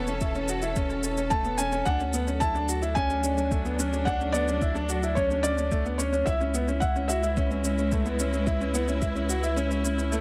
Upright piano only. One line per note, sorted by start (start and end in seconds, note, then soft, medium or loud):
0.08 0.19 C#4 medium
0.21 0.33 E4 medium
0.35 0.47 C#4 medium
0.49 0.61 F#4 medium
0.62 0.74 E4 medium
0.76 0.88 C#4 medium
0.90 1.02 C#4 medium
1.03 1.15 C#4 medium
1.18 1.29 C#4 medium
1.31 1.43 A3 medium
1.45 1.57 B3 medium
1.59 1.71 C#4 medium
1.72 1.84 C#4 medium
1.86 1.98 D4 medium
2.00 2.12 C#4 medium
2.14 2.25 B3 medium
2.27 2.39 C#4 medium
2.41 2.53 E4 medium
2.55 2.67 D4 medium
2.69 2.80 F#4 medium
2.82 2.94 E4 medium
2.96 3.08 C#4 medium
3.10 3.22 C#4 medium
3.24 3.35 C#4 medium
3.37 3.49 C#4 medium
3.51 3.63 A3 medium
3.65 3.77 B3 medium
3.79 3.91 C#4 medium
3.93 4.05 C#4 medium
4.07 4.18 D4 medium
4.20 4.32 C#4 medium
4.34 4.46 B3 medium
4.48 4.60 C#4 medium
4.62 4.73 E4 medium
4.75 4.87 D4 medium
4.89 5.01 F#4 medium
5.03 5.15 E4 medium
5.17 5.28 C#4 medium
5.30 5.42 C#4 medium
5.44 5.56 C#4 medium
5.58 5.69 C#4 medium
5.71 5.83 A3 medium
5.85 5.97 B3 medium
5.99 6.11 C#4 medium
6.13 6.24 C#4 medium
6.26 6.38 E4 loud
6.41 6.52 C#4 medium
6.54 6.66 B3 medium
6.68 6.80 C#4 medium
6.82 6.93 E4 medium
6.96 7.07 C#4 medium
7.10 7.21 F#4 medium
7.23 7.35 E4 medium
7.37 7.49 C#4 medium
7.51 7.62 C#4 medium
7.65 7.76 C#4 medium
7.78 7.90 C#4 medium
7.92 8.04 A3 medium
8.06 8.17 B3 medium
8.19 8.31 C#4 medium
8.33 8.45 C#4 medium
8.47 8.59 E4 loud
8.61 8.72 C#4 medium
8.74 8.86 B3 medium
8.88 9.00 C#4 medium
9.02 9.13 E4 medium
9.15 9.27 C#4 medium
9.29 9.41 F#4 medium
9.43 9.55 E4 medium
9.56 9.68 C#4 loud
9.71 9.82 C#4 medium
9.84 9.96 C#4 medium
9.98 10.10 C#4 medium
10.12 10.21 A3 medium